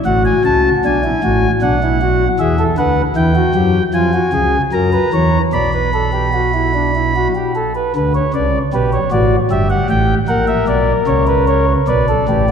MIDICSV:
0, 0, Header, 1, 2, 480
1, 0, Start_track
1, 0, Tempo, 774194
1, 526, Time_signature, 3, 2, 24, 8
1, 2444, Tempo, 803213
1, 4844, Tempo, 787402
1, 7622, End_track
2, 0, Start_track
2, 0, Title_t, "Pipe organ"
2, 0, Program_c, 0, 19
2, 34, Note_on_c, 0, 78, 73
2, 35, Note_on_c, 0, 33, 66
2, 35, Note_on_c, 0, 45, 65
2, 35, Note_on_c, 0, 66, 73
2, 142, Note_off_c, 0, 78, 0
2, 156, Note_on_c, 0, 80, 79
2, 188, Note_off_c, 0, 33, 0
2, 188, Note_off_c, 0, 45, 0
2, 264, Note_off_c, 0, 80, 0
2, 278, Note_on_c, 0, 37, 69
2, 279, Note_on_c, 0, 49, 67
2, 280, Note_on_c, 0, 81, 79
2, 430, Note_off_c, 0, 37, 0
2, 430, Note_off_c, 0, 49, 0
2, 431, Note_off_c, 0, 81, 0
2, 453, Note_off_c, 0, 66, 0
2, 527, Note_on_c, 0, 47, 73
2, 527, Note_on_c, 0, 62, 78
2, 528, Note_on_c, 0, 35, 69
2, 528, Note_on_c, 0, 80, 81
2, 630, Note_off_c, 0, 62, 0
2, 645, Note_on_c, 0, 64, 76
2, 675, Note_off_c, 0, 47, 0
2, 676, Note_off_c, 0, 35, 0
2, 748, Note_off_c, 0, 64, 0
2, 765, Note_on_c, 0, 66, 81
2, 766, Note_on_c, 0, 45, 72
2, 767, Note_on_c, 0, 33, 72
2, 914, Note_off_c, 0, 45, 0
2, 914, Note_off_c, 0, 66, 0
2, 915, Note_off_c, 0, 33, 0
2, 939, Note_off_c, 0, 80, 0
2, 1003, Note_on_c, 0, 62, 86
2, 1004, Note_on_c, 0, 47, 70
2, 1004, Note_on_c, 0, 78, 76
2, 1005, Note_on_c, 0, 35, 74
2, 1106, Note_off_c, 0, 62, 0
2, 1134, Note_on_c, 0, 64, 77
2, 1232, Note_off_c, 0, 64, 0
2, 1249, Note_on_c, 0, 66, 87
2, 1395, Note_off_c, 0, 66, 0
2, 1415, Note_off_c, 0, 35, 0
2, 1415, Note_off_c, 0, 47, 0
2, 1415, Note_off_c, 0, 78, 0
2, 1485, Note_on_c, 0, 40, 68
2, 1485, Note_on_c, 0, 76, 72
2, 1486, Note_on_c, 0, 52, 69
2, 1486, Note_on_c, 0, 68, 76
2, 1587, Note_off_c, 0, 68, 0
2, 1605, Note_on_c, 0, 69, 79
2, 1632, Note_off_c, 0, 40, 0
2, 1632, Note_off_c, 0, 76, 0
2, 1633, Note_off_c, 0, 52, 0
2, 1706, Note_off_c, 0, 69, 0
2, 1723, Note_on_c, 0, 50, 70
2, 1723, Note_on_c, 0, 78, 68
2, 1724, Note_on_c, 0, 71, 78
2, 1725, Note_on_c, 0, 38, 69
2, 1871, Note_off_c, 0, 78, 0
2, 1872, Note_off_c, 0, 50, 0
2, 1872, Note_off_c, 0, 71, 0
2, 1873, Note_off_c, 0, 38, 0
2, 1960, Note_on_c, 0, 40, 78
2, 1960, Note_on_c, 0, 64, 76
2, 1960, Note_on_c, 0, 79, 66
2, 1961, Note_on_c, 0, 52, 73
2, 2064, Note_off_c, 0, 64, 0
2, 2079, Note_on_c, 0, 66, 76
2, 2110, Note_off_c, 0, 40, 0
2, 2110, Note_off_c, 0, 52, 0
2, 2184, Note_off_c, 0, 66, 0
2, 2198, Note_on_c, 0, 42, 74
2, 2198, Note_on_c, 0, 54, 75
2, 2198, Note_on_c, 0, 67, 82
2, 2349, Note_off_c, 0, 42, 0
2, 2349, Note_off_c, 0, 54, 0
2, 2349, Note_off_c, 0, 67, 0
2, 2375, Note_off_c, 0, 79, 0
2, 2443, Note_on_c, 0, 80, 78
2, 2444, Note_on_c, 0, 53, 76
2, 2444, Note_on_c, 0, 65, 87
2, 2445, Note_on_c, 0, 41, 77
2, 2544, Note_off_c, 0, 65, 0
2, 2560, Note_on_c, 0, 66, 79
2, 2590, Note_off_c, 0, 41, 0
2, 2590, Note_off_c, 0, 53, 0
2, 2662, Note_off_c, 0, 66, 0
2, 2673, Note_on_c, 0, 68, 75
2, 2677, Note_on_c, 0, 37, 62
2, 2677, Note_on_c, 0, 49, 71
2, 2822, Note_off_c, 0, 68, 0
2, 2824, Note_off_c, 0, 37, 0
2, 2825, Note_off_c, 0, 49, 0
2, 2849, Note_off_c, 0, 80, 0
2, 2914, Note_on_c, 0, 42, 61
2, 2914, Note_on_c, 0, 54, 71
2, 2914, Note_on_c, 0, 70, 75
2, 2915, Note_on_c, 0, 82, 74
2, 3016, Note_off_c, 0, 70, 0
2, 3034, Note_on_c, 0, 71, 82
2, 3062, Note_off_c, 0, 42, 0
2, 3062, Note_off_c, 0, 54, 0
2, 3136, Note_off_c, 0, 71, 0
2, 3156, Note_on_c, 0, 40, 61
2, 3156, Note_on_c, 0, 52, 63
2, 3156, Note_on_c, 0, 73, 78
2, 3304, Note_off_c, 0, 40, 0
2, 3304, Note_off_c, 0, 52, 0
2, 3304, Note_off_c, 0, 73, 0
2, 3325, Note_off_c, 0, 82, 0
2, 3392, Note_on_c, 0, 74, 70
2, 3394, Note_on_c, 0, 35, 66
2, 3394, Note_on_c, 0, 47, 65
2, 3394, Note_on_c, 0, 83, 67
2, 3497, Note_off_c, 0, 74, 0
2, 3512, Note_on_c, 0, 71, 63
2, 3617, Note_off_c, 0, 71, 0
2, 3635, Note_on_c, 0, 69, 68
2, 3739, Note_off_c, 0, 69, 0
2, 3751, Note_on_c, 0, 67, 60
2, 3858, Note_off_c, 0, 67, 0
2, 3872, Note_on_c, 0, 66, 70
2, 3980, Note_off_c, 0, 66, 0
2, 3997, Note_on_c, 0, 64, 61
2, 4104, Note_off_c, 0, 64, 0
2, 4117, Note_on_c, 0, 62, 62
2, 4225, Note_off_c, 0, 62, 0
2, 4245, Note_on_c, 0, 64, 58
2, 4349, Note_off_c, 0, 64, 0
2, 4366, Note_on_c, 0, 66, 69
2, 4437, Note_off_c, 0, 35, 0
2, 4437, Note_off_c, 0, 47, 0
2, 4437, Note_off_c, 0, 83, 0
2, 4470, Note_off_c, 0, 66, 0
2, 4483, Note_on_c, 0, 67, 58
2, 4588, Note_off_c, 0, 67, 0
2, 4602, Note_on_c, 0, 69, 67
2, 4706, Note_off_c, 0, 69, 0
2, 4720, Note_on_c, 0, 71, 68
2, 4824, Note_off_c, 0, 71, 0
2, 4843, Note_on_c, 0, 50, 72
2, 4844, Note_on_c, 0, 38, 72
2, 4844, Note_on_c, 0, 71, 83
2, 4948, Note_off_c, 0, 71, 0
2, 4958, Note_on_c, 0, 73, 78
2, 4991, Note_off_c, 0, 50, 0
2, 4992, Note_off_c, 0, 38, 0
2, 5062, Note_off_c, 0, 73, 0
2, 5075, Note_on_c, 0, 49, 67
2, 5077, Note_on_c, 0, 37, 68
2, 5077, Note_on_c, 0, 74, 80
2, 5225, Note_off_c, 0, 37, 0
2, 5225, Note_off_c, 0, 49, 0
2, 5226, Note_off_c, 0, 74, 0
2, 5318, Note_on_c, 0, 35, 71
2, 5318, Note_on_c, 0, 47, 78
2, 5319, Note_on_c, 0, 67, 75
2, 5319, Note_on_c, 0, 71, 90
2, 5421, Note_off_c, 0, 71, 0
2, 5435, Note_on_c, 0, 73, 82
2, 5465, Note_off_c, 0, 47, 0
2, 5466, Note_off_c, 0, 35, 0
2, 5466, Note_off_c, 0, 67, 0
2, 5538, Note_off_c, 0, 73, 0
2, 5550, Note_on_c, 0, 33, 71
2, 5550, Note_on_c, 0, 45, 64
2, 5550, Note_on_c, 0, 74, 84
2, 5552, Note_on_c, 0, 66, 76
2, 5699, Note_off_c, 0, 33, 0
2, 5699, Note_off_c, 0, 45, 0
2, 5700, Note_off_c, 0, 74, 0
2, 5701, Note_off_c, 0, 66, 0
2, 5790, Note_on_c, 0, 31, 70
2, 5791, Note_on_c, 0, 43, 74
2, 5791, Note_on_c, 0, 67, 74
2, 5792, Note_on_c, 0, 76, 85
2, 5895, Note_off_c, 0, 76, 0
2, 5905, Note_on_c, 0, 78, 83
2, 5938, Note_off_c, 0, 31, 0
2, 5939, Note_off_c, 0, 43, 0
2, 6011, Note_off_c, 0, 78, 0
2, 6028, Note_on_c, 0, 33, 77
2, 6028, Note_on_c, 0, 79, 88
2, 6029, Note_on_c, 0, 45, 73
2, 6177, Note_off_c, 0, 33, 0
2, 6177, Note_off_c, 0, 79, 0
2, 6178, Note_off_c, 0, 45, 0
2, 6202, Note_off_c, 0, 67, 0
2, 6259, Note_on_c, 0, 78, 93
2, 6261, Note_on_c, 0, 34, 76
2, 6262, Note_on_c, 0, 70, 79
2, 6263, Note_on_c, 0, 46, 78
2, 6367, Note_off_c, 0, 78, 0
2, 6378, Note_on_c, 0, 76, 89
2, 6412, Note_off_c, 0, 34, 0
2, 6414, Note_off_c, 0, 46, 0
2, 6486, Note_off_c, 0, 76, 0
2, 6501, Note_on_c, 0, 35, 86
2, 6502, Note_on_c, 0, 74, 91
2, 6504, Note_on_c, 0, 47, 78
2, 6653, Note_off_c, 0, 35, 0
2, 6653, Note_off_c, 0, 74, 0
2, 6655, Note_off_c, 0, 47, 0
2, 6742, Note_on_c, 0, 37, 86
2, 6742, Note_on_c, 0, 73, 100
2, 6743, Note_on_c, 0, 49, 84
2, 6849, Note_off_c, 0, 73, 0
2, 6864, Note_on_c, 0, 71, 85
2, 6971, Note_off_c, 0, 71, 0
2, 6989, Note_on_c, 0, 73, 99
2, 7096, Note_off_c, 0, 70, 0
2, 7141, Note_off_c, 0, 73, 0
2, 7164, Note_off_c, 0, 37, 0
2, 7164, Note_off_c, 0, 49, 0
2, 7233, Note_on_c, 0, 35, 75
2, 7233, Note_on_c, 0, 74, 92
2, 7234, Note_on_c, 0, 71, 78
2, 7236, Note_on_c, 0, 47, 69
2, 7340, Note_off_c, 0, 71, 0
2, 7360, Note_on_c, 0, 69, 76
2, 7386, Note_off_c, 0, 35, 0
2, 7388, Note_off_c, 0, 47, 0
2, 7465, Note_off_c, 0, 69, 0
2, 7481, Note_on_c, 0, 45, 67
2, 7482, Note_on_c, 0, 33, 75
2, 7483, Note_on_c, 0, 67, 72
2, 7587, Note_off_c, 0, 67, 0
2, 7622, Note_off_c, 0, 33, 0
2, 7622, Note_off_c, 0, 45, 0
2, 7622, Note_off_c, 0, 74, 0
2, 7622, End_track
0, 0, End_of_file